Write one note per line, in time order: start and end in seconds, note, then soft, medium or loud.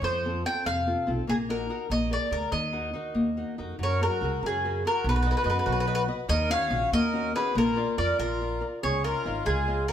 0.02 0.43 F2 medium
0.02 0.43 F3 medium
0.02 0.42 C5 medium
0.25 0.44 C4 soft
0.25 0.44 F4 soft
0.25 0.46 A4 soft
0.45 0.78 C4 soft
0.45 0.78 F4 soft
0.45 0.79 A4 medium
0.45 0.66 G5 medium
0.65 0.93 F2 medium
0.65 1.05 C3 medium
0.65 1.09 F5 medium
0.86 1.06 C4 soft
0.86 1.05 F4 soft
0.86 1.07 A4 soft
1.07 1.21 B1 medium
1.07 1.23 C4 soft
1.07 1.23 F4 soft
1.07 1.24 A4 soft
1.27 1.68 A#1 medium
1.27 1.67 A#3 medium
1.27 1.35 G#4 medium
1.49 1.68 D#4 soft
1.49 1.69 F#4 soft
1.49 1.87 A#4 medium
1.49 1.69 A#4 soft
1.69 1.86 D#4 soft
1.69 1.86 F#4 soft
1.69 1.86 A#4 medium
1.90 2.16 A#1 medium
1.90 2.30 A#3 medium
1.90 2.09 D#5 medium
2.10 2.29 G#4 soft
2.10 2.30 A#4 soft
2.10 2.31 D5 soft
2.10 2.32 D5 medium
2.31 2.44 D2 medium
2.31 2.47 G#4 soft
2.31 2.47 A#4 soft
2.31 2.51 A#4 medium
2.31 2.48 D5 medium
2.52 2.92 D#2 medium
2.52 2.92 D#3 medium
2.52 3.53 D#5 medium
2.72 2.92 D#4 soft
2.72 2.93 F#4 soft
2.72 2.94 A#4 soft
2.93 3.27 D#4 soft
2.93 3.28 F#4 soft
2.93 3.28 A#4 soft
3.14 3.42 D#2 medium
3.14 3.56 A#3 medium
3.37 3.57 D#4 soft
3.37 3.57 F#4 soft
3.37 3.58 A#4 soft
3.58 3.72 F2 medium
3.58 3.75 D#4 soft
3.58 3.75 F#4 soft
3.58 3.75 A#4 soft
3.79 4.06 F#2 medium
3.79 4.20 F#3 medium
3.83 4.01 A#4 medium
3.83 4.01 C#5 medium
4.01 4.21 F#4 soft
4.01 4.23 G#4 soft
4.01 4.23 A#4 soft
4.01 4.41 A#4 medium
4.06 4.42 F#4 medium
4.21 4.35 C#2 medium
4.21 4.56 F#4 soft
4.21 4.56 G#4 soft
4.21 4.57 A#4 medium
4.42 4.83 F#2 medium
4.42 4.83 C#3 medium
4.46 4.84 C#4 medium
4.46 4.83 G#4 medium
4.64 4.84 F#4 soft
4.64 4.84 G#4 soft
4.64 4.85 A#4 soft
4.85 5.01 F#4 soft
4.85 5.05 F#4 medium
4.85 5.01 G#4 soft
4.85 5.02 A#4 medium
4.85 5.05 A#4 medium
5.04 5.31 B1 medium
5.04 5.45 B3 medium
5.08 6.06 F#4 medium
5.08 5.14 B4 medium
5.16 5.21 B4 medium
5.22 5.43 F#4 soft
5.22 5.28 B4 medium
5.22 5.44 B4 soft
5.22 5.45 D#5 medium
5.31 5.36 B4 soft
5.37 5.43 B4 medium
5.44 5.59 F#2 medium
5.44 5.78 F#4 medium
5.44 5.48 B4 soft
5.44 5.79 B4 soft
5.44 5.79 D#5 medium
5.50 5.56 B4 medium
5.59 5.65 B4 soft
5.66 6.07 B1 medium
5.66 6.07 F#3 medium
5.66 5.71 B4 medium
5.72 5.79 B4 medium
5.80 5.86 B4 medium
5.86 6.07 F#4 soft
5.86 6.07 B4 soft
5.86 5.94 B4 medium
5.86 6.07 D#5 soft
5.95 6.02 B4 medium
6.08 6.25 F#4 soft
6.08 6.25 B4 soft
6.08 6.25 D#5 medium
6.28 6.56 D#2 loud
6.28 6.69 D#3 medium
6.28 6.50 A#4 medium
6.28 6.49 D#5 loud
6.50 6.69 C#4 medium
6.50 6.71 D#4 medium
6.50 6.71 F#4 medium
6.50 6.90 C#5 medium
6.50 6.89 F5 loud
6.71 6.84 A#1 loud
6.71 7.05 C#4 soft
6.71 7.05 D#4 soft
6.71 7.05 F#4 medium
6.92 7.33 D#2 medium
6.92 7.33 A#3 medium
6.92 7.32 A#4 medium
6.92 7.32 D#5 loud
7.13 7.34 C#4 soft
7.13 7.34 D#4 soft
7.13 7.35 F#4 medium
7.35 7.52 C#4 medium
7.35 7.52 D#4 soft
7.35 7.52 F#4 medium
7.35 7.54 G#4 medium
7.35 7.54 B4 medium
7.55 7.83 A#1 medium
7.55 7.96 A#3 medium
7.55 7.95 F4 medium
7.55 7.96 A#4 medium
7.76 7.96 F4 soft
7.76 7.97 A#4 soft
7.76 7.97 D5 medium
7.97 8.12 F2 medium
7.97 8.31 F4 soft
7.97 8.17 A#4 medium
7.97 8.32 A#4 soft
7.97 8.17 D5 medium
7.97 8.32 D5 medium
8.18 8.60 A#1 medium
8.18 8.60 F3 medium
8.18 8.63 F4 medium
8.18 8.64 A#4 medium
8.41 8.60 F4 soft
8.41 8.60 A#4 soft
8.41 8.60 D5 soft
8.61 8.78 F4 soft
8.61 8.78 A#4 soft
8.61 8.79 D5 soft
8.83 9.11 C#2 medium
8.83 9.24 C#4 medium
8.83 9.03 G#4 medium
8.83 9.04 C#5 medium
9.03 9.43 F4 medium
9.03 9.44 A#4 medium
9.03 9.24 C#5 soft
9.03 9.24 D#5 soft
9.03 9.25 F5 soft
9.26 9.39 G#1 medium
9.26 9.60 C#5 medium
9.26 9.59 D#5 soft
9.26 9.60 F5 soft
9.45 9.87 C#2 medium
9.45 9.87 G#3 medium
9.45 9.86 F4 medium
9.45 9.86 G#4 medium
9.67 9.88 C#5 soft
9.67 9.88 D#5 soft
9.67 9.88 F5 soft
9.87 9.93 F#4 medium
9.87 9.93 A#4 medium
9.87 9.93 C#5 soft
9.87 9.93 D#5 soft
9.87 9.93 F5 soft